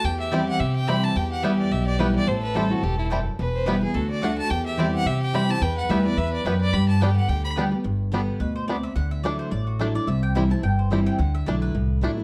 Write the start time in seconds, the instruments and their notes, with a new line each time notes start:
0.04 upright bass E2, steel-string acoustic guitar E2, fiddle G4 G5
0.20 fiddle E5
0.31 steel-string acoustic guitar E3 G3 C4 E4, five-string banjo G3 C4 E4, mandolin C4 E4 C5 G5, fiddle D5
0.48 fiddle F#5
0.60 steel-string acoustic guitar C3, upright bass C3, fiddle E5
0.76 fiddle G5
0.87 steel-string acoustic guitar E3 G3 C4 E4, five-string banjo G3 C4 E4, mandolin C4 E4 C5 G5, fiddle B5
1.03 fiddle A5
1.15 steel-string acoustic guitar E2, upright bass E2, fiddle G4 G5
1.31 fiddle F#5
1.42 steel-string acoustic guitar E3 G3 B3 E4, five-string banjo G3 B3 E4, mandolin B3 E4 B4 G5, fiddle E5
1.59 fiddle D5
1.71 upright bass B1, steel-string acoustic guitar B2, fiddle E5
1.87 fiddle D5
1.98 steel-string acoustic guitar E3 G3 B3 E4, five-string banjo G3 B3 E4, mandolin B3 E4 B4 G5, fiddle B4
2.15 fiddle D5
2.27 upright bass A1, steel-string acoustic guitar A2, fiddle A4 C5
2.43 fiddle B4
2.54 steel-string acoustic guitar E3 G3 C4 E4, five-string banjo G3 C4 E4, mandolin A3 E4 C5 G5, fiddle A4
2.70 steel-string acoustic guitar C4 E4, fiddle F#4
2.83 upright bass E1, steel-string acoustic guitar G2, fiddle G4
2.99 fiddle E4
3.10 steel-string acoustic guitar F#2, five-string banjo G3 C4 E4, mandolin A3 E4 C5 G5
3.39 upright bass E1, steel-string acoustic guitar E2, fiddle B4
3.55 fiddle C5
3.66 steel-string acoustic guitar E3 G3 B3 E4, five-string banjo G3 B3 E4, mandolin B3 E4 B4 G5, fiddle B4
3.81 steel-string acoustic guitar B3 E4, fiddle G#4
3.94 upright bass D2, steel-string acoustic guitar D3, fiddle F#4 A4
4.10 fiddle D5
4.22 steel-string acoustic guitar D3 A3 D4 F#4, mandolin A3 F#4 D5 F#5, five-string banjo A3 D4, fiddle F#5
4.38 fiddle A5
4.50 steel-string acoustic guitar E2, upright bass E2, fiddle G4 G5
4.66 fiddle E5
4.77 steel-string acoustic guitar E3 G3 C4 E4, five-string banjo G3 C4 E4, mandolin C4 E4 C5 G5, fiddle D5
4.95 fiddle F#5
5.06 upright bass C3, steel-string acoustic guitar C3, fiddle E5
5.22 fiddle G5
5.33 steel-string acoustic guitar E3 G3 C4 E4, five-string banjo G3 C4 E4, mandolin C4 E4 C5 G5, fiddle B5
5.49 steel-string acoustic guitar C4 E4, fiddle A5
5.61 upright bass E2, steel-string acoustic guitar E2, fiddle B4 G5
5.78 fiddle F#5
5.89 upright bass D2, steel-string acoustic guitar E3 G3 B3 E4, five-string banjo G3 B3 E4, mandolin B3 E4 B4 G5, fiddle E5
6.05 steel-string acoustic guitar B3 E4, fiddle D5
6.17 upright bass E2, steel-string acoustic guitar E2, fiddle E5
6.33 fiddle D5
6.45 upright bass F#2, steel-string acoustic guitar F#2, five-string banjo G3 B3 E4, mandolin B3 E4 B4 G5, fiddle B4
6.61 fiddle D5
6.73 upright bass G2, steel-string acoustic guitar G2, fiddle G4 B5
6.88 fiddle A5
7.00 steel-string acoustic guitar D3 G3 B3 G4, five-string banjo G3 B3 D4, mandolin B3 G4 D5 G5, fiddle G5
7.16 fiddle F#5
7.28 upright bass D2, steel-string acoustic guitar D3, fiddle G5
7.44 fiddle B5
7.56 steel-string acoustic guitar D3 G3 B3 G4, five-string banjo G3 B3 D4, mandolin B3 G4 D5 G5
7.72 steel-string acoustic guitar B3 G4
7.84 upright bass G1, steel-string acoustic guitar G2
8.12 steel-string acoustic guitar D3 G3 B3 G4, five-string banjo G3 B3 D4
8.40 upright bass D2, steel-string acoustic guitar B2, mandolin B4
8.56 mandolin C5
8.68 steel-string acoustic guitar C3, five-string banjo G3 B3 D4, mandolin D5
8.83 mandolin E5
8.96 upright bass D2, steel-string acoustic guitar D3, mandolin F#5
9.11 mandolin E5
9.23 steel-string acoustic guitar F#3 A3 D4 E4, five-string banjo A3 D4, mandolin D5
9.39 mandolin C5
9.51 upright bass A1, steel-string acoustic guitar A2, mandolin D5
9.67 mandolin F#4
9.79 steel-string acoustic guitar F#3 A3 D4 E4, five-string banjo A3 D4, mandolin A4
9.95 steel-string acoustic guitar D4 E4, mandolin D5
10.07 upright bass C2, steel-string acoustic guitar C3, mandolin E5
10.23 mandolin G5
10.35 steel-string acoustic guitar E3 G3 C4 E4, five-string banjo G3 C4 E4, mandolin B5
10.50 steel-string acoustic guitar C4 E4, mandolin A5
10.63 upright bass G1, steel-string acoustic guitar G2, mandolin G5
10.79 mandolin C5
10.91 steel-string acoustic guitar E3 G3 C4 E4, five-string banjo G3 C4 E4, mandolin E5
11.06 mandolin G5
11.19 upright bass D2, steel-string acoustic guitar D3, mandolin F#5
11.35 mandolin E5
11.46 upright bass B1, steel-string acoustic guitar F#3 A3 D4 E4, five-string banjo A3 D4, mandolin D5
11.62 mandolin B4
11.75 upright bass C2, steel-string acoustic guitar A2
12.01 upright bass D2, steel-string acoustic guitar F#3 A3 D4 E4, five-string banjo A3 D4
12.17 steel-string acoustic guitar D4 E4